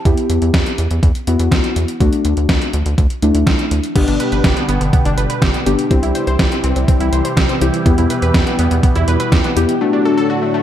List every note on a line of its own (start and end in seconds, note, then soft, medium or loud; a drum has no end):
0.05 0.14 E2 loud
0.05 0.84 B3 medium
0.05 0.84 E4 medium
0.05 0.84 G4 medium
0.05 kick loud
0.05 closed hi-hat medium
0.17 closed hi-hat medium
0.30 0.39 E2 medium
0.30 closed hi-hat medium
0.42 0.51 E2 loud
0.42 closed hi-hat soft
0.54 0.63 E2 loud
0.54 kick loud
0.54 snare loud
0.54 closed hi-hat medium
0.66 closed hi-hat medium
0.78 0.88 E2 medium
0.78 closed hi-hat medium
0.91 1.00 E2 loud
0.91 closed hi-hat medium
1.03 1.12 E2 loud
1.03 kick loud
1.03 closed hi-hat medium
1.15 closed hi-hat soft
1.27 1.36 E2 loud
1.27 1.86 B3 medium
1.27 1.86 E4 medium
1.27 1.86 F#4 medium
1.27 closed hi-hat medium
1.39 1.49 E2 loud
1.39 closed hi-hat medium
1.52 1.61 D2 medium
1.52 kick loud
1.52 snare loud
1.52 closed hi-hat medium
1.64 closed hi-hat medium
1.76 1.85 E2 medium
1.76 closed hi-hat medium
1.88 closed hi-hat medium
2.00 2.09 D2 loud
2.00 2.79 A3 medium
2.00 2.79 D4 medium
2.00 2.79 F#4 medium
2.00 kick loud
2.00 closed hi-hat medium
2.13 closed hi-hat medium
2.25 2.34 D2 loud
2.25 closed hi-hat medium
2.37 2.46 D2 medium
2.37 closed hi-hat soft
2.49 2.58 D2 loud
2.49 kick loud
2.49 snare loud
2.49 closed hi-hat medium
2.62 closed hi-hat medium
2.73 2.83 D2 loud
2.73 closed hi-hat medium
2.86 2.95 D2 loud
2.86 closed hi-hat medium
2.98 3.07 D2 loud
2.98 kick loud
2.98 closed hi-hat medium
3.10 closed hi-hat soft
3.22 3.31 D2 loud
3.22 3.81 A3 medium
3.22 3.81 D4 medium
3.22 3.81 E4 medium
3.22 closed hi-hat medium
3.35 3.44 D2 medium
3.35 closed hi-hat medium
3.47 3.56 C2 medium
3.47 kick loud
3.47 snare loud
3.47 closed hi-hat medium
3.59 closed hi-hat medium
3.71 3.80 D2 medium
3.71 closed hi-hat medium
3.83 closed hi-hat medium
3.96 4.05 G1 loud
3.96 5.89 B2 medium
3.96 5.89 D3 medium
3.96 9.77 G3 medium
3.96 4.07 B3 medium
3.96 4.74 B3 medium
3.96 4.74 D4 medium
3.96 5.89 D4 medium
3.96 4.74 G4 medium
3.96 5.89 G4 medium
3.96 kick loud
3.96 closed hi-hat medium
3.96 crash loud
4.08 4.17 G1 loud
4.08 4.19 D4 medium
4.08 closed hi-hat medium
4.20 4.31 B4 medium
4.20 closed hi-hat medium
4.32 4.41 G1 loud
4.32 4.43 B4 medium
4.32 closed hi-hat soft
4.44 4.53 G1 loud
4.44 4.55 G4 medium
4.44 kick loud
4.44 snare loud
4.44 closed hi-hat medium
4.57 4.68 B3 medium
4.57 closed hi-hat medium
4.69 4.78 G1 loud
4.69 4.80 B3 medium
4.69 closed hi-hat medium
4.81 4.90 G1 medium
4.81 4.92 B3 medium
4.81 closed hi-hat medium
4.93 5.04 B3 medium
4.93 kick loud
4.93 closed hi-hat medium
5.05 5.14 G1 loud
5.05 5.16 D4 medium
5.05 closed hi-hat medium
5.18 5.27 G1 loud
5.18 5.28 B4 medium
5.18 closed hi-hat medium
5.30 5.41 B4 medium
5.30 closed hi-hat medium
5.42 5.51 G1 loud
5.42 5.53 G4 medium
5.42 kick loud
5.42 snare loud
5.42 closed hi-hat medium
5.54 5.65 B3 medium
5.54 closed hi-hat medium
5.66 5.75 G1 loud
5.66 5.86 B3 medium
5.66 5.86 D4 medium
5.66 5.77 G4 medium
5.66 5.86 G4 loud
5.66 closed hi-hat medium
5.79 closed hi-hat medium
5.91 6.00 C2 loud
5.91 7.84 C3 medium
5.91 9.77 E3 medium
5.91 6.02 C4 medium
5.91 6.69 C4 medium
5.91 6.69 E4 medium
5.91 9.77 E4 medium
5.91 6.69 G4 medium
5.91 9.77 G4 medium
5.91 kick loud
5.91 closed hi-hat medium
6.03 6.12 C2 medium
6.03 6.14 E4 medium
6.03 closed hi-hat medium
6.15 6.26 C5 medium
6.15 closed hi-hat medium
6.27 6.36 C2 medium
6.27 6.38 C5 loud
6.27 closed hi-hat soft
6.39 6.48 C2 loud
6.39 6.50 G4 medium
6.39 kick loud
6.39 snare loud
6.39 closed hi-hat medium
6.52 6.63 C4 medium
6.52 closed hi-hat medium
6.64 6.73 C2 loud
6.64 6.75 C4 medium
6.64 closed hi-hat medium
6.76 6.85 C2 loud
6.76 6.87 C4 medium
6.76 closed hi-hat medium
6.88 6.99 C4 medium
6.88 kick loud
6.88 closed hi-hat medium
7.00 7.09 C2 loud
7.00 7.11 E4 medium
7.00 closed hi-hat soft
7.13 7.22 C2 loud
7.13 7.24 C5 medium
7.13 closed hi-hat medium
7.25 7.36 C5 medium
7.25 closed hi-hat medium
7.37 7.46 C2 loud
7.37 7.48 G4 medium
7.37 kick loud
7.37 snare loud
7.37 closed hi-hat medium
7.49 7.60 C4 medium
7.49 closed hi-hat medium
7.61 7.70 C2 loud
7.61 7.81 C4 medium
7.61 7.81 E4 medium
7.61 7.72 G4 medium
7.61 7.81 G4 medium
7.61 closed hi-hat medium
7.74 closed hi-hat medium
7.86 7.95 E2 loud
7.86 9.79 B2 medium
7.86 8.64 B3 medium
7.86 7.97 B3 medium
7.86 8.64 E4 medium
7.86 8.64 G4 medium
7.86 kick loud
7.86 closed hi-hat medium
7.98 8.07 E2 loud
7.98 8.09 E4 medium
7.98 closed hi-hat medium
8.10 8.21 B4 medium
8.10 closed hi-hat medium
8.22 8.31 E2 medium
8.22 8.33 B4 medium
8.22 closed hi-hat soft
8.34 8.43 E2 loud
8.34 8.46 G4 medium
8.34 kick loud
8.34 snare loud
8.34 closed hi-hat medium
8.47 8.58 B3 medium
8.47 closed hi-hat medium
8.59 8.68 E2 medium
8.59 8.70 B3 medium
8.59 closed hi-hat medium
8.71 8.80 E2 loud
8.71 8.82 B3 medium
8.71 closed hi-hat medium
8.83 8.94 B3 medium
8.83 kick loud
8.83 closed hi-hat medium
8.96 9.05 E2 loud
8.96 9.07 E4 medium
8.96 closed hi-hat medium
9.08 9.17 E2 loud
9.08 9.19 B4 medium
9.08 closed hi-hat medium
9.20 9.31 B4 medium
9.20 closed hi-hat medium
9.32 9.41 E2 loud
9.32 9.43 G4 medium
9.32 kick loud
9.32 snare loud
9.32 closed hi-hat medium
9.44 9.55 B3 medium
9.44 closed hi-hat medium
9.56 9.66 E2 medium
9.56 9.76 B3 medium
9.56 9.76 E4 medium
9.56 9.76 G4 loud
9.56 9.67 G4 medium
9.56 closed hi-hat medium
9.69 closed hi-hat medium
9.81 10.63 A2 medium
9.81 10.63 D3 medium
9.81 10.63 F#3 medium
9.81 10.59 A3 medium
9.81 9.92 A3 medium
9.81 10.59 D4 medium
9.81 10.63 D4 medium
9.81 10.59 F#4 medium
9.81 10.63 F#4 medium
9.93 10.04 D4 medium
10.05 10.16 A4 medium
10.18 10.28 A4 medium
10.30 10.41 F#4 medium
10.42 10.53 A3 medium
10.54 10.63 A3 medium